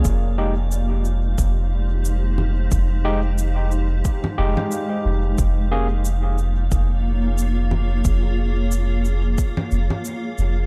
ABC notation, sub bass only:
X:1
M:4/4
L:1/8
Q:"Swing 16ths" 1/4=90
K:Fm
V:1 name="Sub bass" clef=bass
F,,,4 F,,,4 | F,,,4 z F,,, z F,,, | F,,,4 F,,,4 | F,,,4 z F,,, z F,,, |]